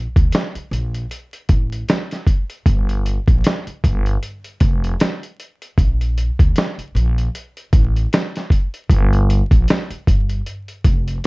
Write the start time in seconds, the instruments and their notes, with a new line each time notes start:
0.16 upright bass D2, kick, closed hi-hat
0.32 snare, closed hi-hat
0.55 muted upright bass stroke, closed hi-hat
0.71 upright bass A#1, closed hi-hat
0.94 closed hi-hat
1.11 closed hi-hat
1.33 closed hi-hat
1.49 upright bass A1, kick, closed hi-hat
1.72 closed hi-hat
1.89 snare, closed hi-hat
2.11 snare, closed hi-hat
2.27 kick, closed hi-hat
2.50 closed hi-hat
2.66 upright bass G1, kick, closed hi-hat
2.89 closed hi-hat
3.06 closed hi-hat
3.28 upright bass A#1, kick, closed hi-hat
3.44 snare, closed hi-hat
3.67 muted upright bass stroke, closed hi-hat
3.84 upright bass G1, kick, closed hi-hat
4.06 closed hi-hat
4.23 closed hi-hat
4.44 closed hi-hat
4.60 upright bass F1, kick, closed hi-hat
4.84 closed hi-hat
5.00 snare, closed hi-hat
5.23 closed hi-hat
5.40 closed hi-hat
5.62 closed hi-hat
5.78 upright bass A#1, kick, closed hi-hat
6.01 closed hi-hat
6.18 closed hi-hat
6.39 upright bass D2, kick, closed hi-hat
6.56 snare, closed hi-hat
6.78 muted upright bass stroke, closed hi-hat
6.95 upright bass A#1, closed hi-hat
7.18 closed hi-hat
7.35 closed hi-hat
7.57 closed hi-hat
7.73 upright bass A1, kick, closed hi-hat
7.96 closed hi-hat
8.13 snare, closed hi-hat
8.36 snare, closed hi-hat
8.50 kick, closed hi-hat
8.74 closed hi-hat
8.89 upright bass G1, kick, closed hi-hat
9.13 closed hi-hat
9.30 closed hi-hat
9.51 upright bass A#1, kick, closed hi-hat
9.68 snare, closed hi-hat
9.90 muted upright bass stroke, closed hi-hat
10.07 upright bass G1, kick, closed hi-hat
10.29 closed hi-hat
10.46 closed hi-hat
10.68 closed hi-hat
10.84 upright bass F1, kick, closed hi-hat
11.08 closed hi-hat